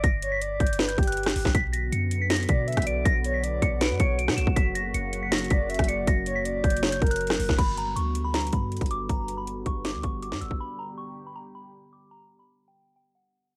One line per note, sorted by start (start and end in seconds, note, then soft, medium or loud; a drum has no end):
0.04 0.58 G1 loud
0.04 0.30 A#6 loud
0.04 kick loud
0.04 closed hi-hat medium
0.22 0.41 C#5 medium
0.22 closed hi-hat medium
0.32 0.41 B6 loud
0.41 0.77 D5 medium
0.41 closed hi-hat medium
0.60 0.96 G1 loud
0.60 0.87 G6 medium
0.60 kick medium
0.60 closed hi-hat medium
0.67 closed hi-hat medium
0.73 closed hi-hat medium
0.79 0.97 B4 medium
0.79 snare loud
0.79 closed hi-hat soft
0.88 1.06 G6 medium
0.88 closed hi-hat medium
0.98 1.34 G1 loud
0.98 1.51 G4 medium
0.98 kick loud
0.98 closed hi-hat soft
1.03 closed hi-hat medium
1.07 1.52 F#6 medium
1.07 closed hi-hat medium
1.12 closed hi-hat medium
1.17 closed hi-hat soft
1.23 cross-stick loud
1.23 snare loud
1.23 closed hi-hat medium
1.29 closed hi-hat medium
1.36 1.44 G1 loud
1.36 open hi-hat medium
1.45 1.54 G1 loud
1.45 kick medium
1.45 snare medium
1.54 1.91 B1 loud
1.54 4.53 D3 medium
1.54 7.54 F#3 medium
1.54 4.53 B3 medium
1.54 7.54 F#4 medium
1.54 1.72 B6 loud
1.54 kick loud
1.54 closed hi-hat medium
1.73 1.91 A#6 medium
1.73 closed hi-hat medium
1.92 2.47 F#2 loud
1.92 2.19 C#7 medium
1.92 closed hi-hat medium
2.11 closed hi-hat medium
2.21 2.30 B6 medium
2.30 2.48 A#6 medium
2.30 snare loud
2.30 closed hi-hat medium
2.36 closed hi-hat medium
2.43 closed hi-hat soft
2.49 2.76 B2 loud
2.49 2.67 D5 medium
2.49 2.84 B6 medium
2.49 kick loud
2.49 closed hi-hat medium
2.68 2.86 E5 medium
2.68 closed hi-hat soft
2.72 closed hi-hat soft
2.77 3.04 B1 loud
2.77 kick medium
2.77 cross-stick loud
2.77 closed hi-hat medium
2.82 closed hi-hat medium
2.87 3.05 D5 medium
2.87 3.04 D7 medium
2.87 closed hi-hat medium
3.05 3.60 B1 loud
3.05 3.32 A#6 loud
3.05 kick loud
3.05 closed hi-hat medium
3.24 3.42 C#5 medium
3.24 closed hi-hat medium
3.34 3.43 B6 medium
3.44 3.79 D5 medium
3.44 closed hi-hat medium
3.62 3.92 B1 loud
3.62 3.80 C#7 medium
3.62 kick medium
3.62 closed hi-hat medium
3.81 3.99 B4 medium
3.81 3.99 D7 medium
3.81 snare loud
3.81 closed hi-hat medium
3.90 3.99 F#2 loud
4.00 4.30 B1 loud
4.00 4.18 C#5 medium
4.00 4.17 C#7 medium
4.00 kick loud
4.00 closed hi-hat medium
4.18 4.36 D7 medium
4.18 closed hi-hat medium
4.28 4.37 B2 loud
4.28 cross-stick loud
4.28 snare loud
4.37 4.46 B1 loud
4.37 4.55 E7 medium
4.37 closed hi-hat medium
4.47 4.56 B1 loud
4.47 kick loud
4.56 4.93 F#1 loud
4.56 7.55 C#3 medium
4.56 7.55 A#3 medium
4.56 4.74 B6 loud
4.56 kick loud
4.56 closed hi-hat medium
4.75 4.93 A#6 medium
4.75 closed hi-hat medium
4.94 5.49 F#1 loud
4.94 5.21 C#7 medium
4.94 closed hi-hat medium
5.13 closed hi-hat medium
5.23 5.32 B6 medium
5.32 5.50 A#6 medium
5.32 snare loud
5.32 closed hi-hat medium
5.38 closed hi-hat medium
5.45 closed hi-hat soft
5.50 5.78 F#1 loud
5.50 5.69 D5 medium
5.50 5.86 B6 medium
5.50 kick loud
5.50 closed hi-hat medium
5.70 5.88 E5 medium
5.70 closed hi-hat soft
5.75 closed hi-hat soft
5.79 6.06 F#1 loud
5.79 kick medium
5.79 cross-stick loud
5.79 closed hi-hat medium
5.84 closed hi-hat medium
5.88 6.07 D5 medium
5.88 6.06 C#7 medium
5.88 closed hi-hat medium
6.07 6.62 F#1 loud
6.07 6.34 A#6 loud
6.07 kick loud
6.07 closed hi-hat medium
6.26 6.44 C#5 medium
6.26 closed hi-hat medium
6.36 6.44 B6 medium
6.45 6.81 D5 medium
6.45 closed hi-hat medium
6.64 7.00 F#1 loud
6.64 6.91 G6 medium
6.64 kick loud
6.64 closed hi-hat medium
6.70 closed hi-hat medium
6.77 closed hi-hat medium
6.82 7.01 C#5 medium
6.82 snare loud
6.82 closed hi-hat soft
6.92 7.10 G6 medium
6.92 closed hi-hat medium
7.01 7.38 F#1 loud
7.01 7.55 A#4 medium
7.01 kick loud
7.01 closed hi-hat soft
7.06 closed hi-hat medium
7.11 7.55 F#6 medium
7.11 closed hi-hat medium
7.16 closed hi-hat medium
7.21 closed hi-hat soft
7.27 cross-stick loud
7.27 snare loud
7.27 closed hi-hat medium
7.33 closed hi-hat medium
7.39 7.48 F#1 loud
7.39 open hi-hat medium
7.49 7.58 F#1 loud
7.49 kick loud
7.49 snare medium
7.58 7.95 G1 loud
7.58 13.56 D3 medium
7.58 13.56 G3 medium
7.58 13.56 B3 medium
7.58 10.57 F#4 medium
7.58 7.76 B5 loud
7.58 kick loud
7.58 closed hi-hat medium
7.58 crash medium
7.77 7.95 A#5 medium
7.77 closed hi-hat medium
7.96 8.50 D2 loud
7.96 8.23 C#6 medium
7.96 closed hi-hat medium
8.15 closed hi-hat medium
8.24 8.33 B5 medium
8.34 8.52 A#5 medium
8.34 snare loud
8.34 closed hi-hat medium
8.40 closed hi-hat medium
8.47 closed hi-hat soft
8.52 8.80 G2 loud
8.52 8.88 B5 medium
8.52 kick loud
8.52 closed hi-hat medium
8.72 closed hi-hat soft
8.76 closed hi-hat soft
8.81 9.08 G1 loud
8.81 kick medium
8.81 closed hi-hat medium
8.86 closed hi-hat medium
8.91 9.08 D6 medium
8.91 closed hi-hat medium
9.09 9.64 G1 loud
9.09 9.36 A#5 loud
9.09 kick loud
9.09 closed hi-hat medium
9.28 closed hi-hat medium
9.37 9.46 B5 medium
9.47 closed hi-hat medium
9.66 9.96 G1 loud
9.66 9.84 C#6 medium
9.66 kick medium
9.66 closed hi-hat medium
9.85 10.02 D6 medium
9.85 snare loud
9.85 closed hi-hat medium
9.94 10.03 D2 loud
10.03 10.34 G1 loud
10.03 10.21 C#6 medium
10.03 kick loud
10.03 closed hi-hat medium
10.22 10.40 D6 medium
10.22 closed hi-hat medium
10.32 10.41 G2 loud
10.32 snare medium
10.41 10.50 G1 loud
10.41 10.59 E6 medium
10.41 closed hi-hat medium
10.51 10.60 G1 loud
10.51 kick medium
10.60 13.56 G4 medium
10.60 10.78 B5 medium
10.79 10.97 A#5 medium
10.98 11.24 C#6 medium
11.27 11.35 B5 medium
11.36 11.53 A#5 medium
11.55 11.90 B5 medium
11.93 12.10 D6 medium
12.11 12.38 A#5 loud
12.39 12.48 B5 medium
12.68 12.94 G5 medium
12.96 13.14 G5 medium
13.15 13.56 F#5 medium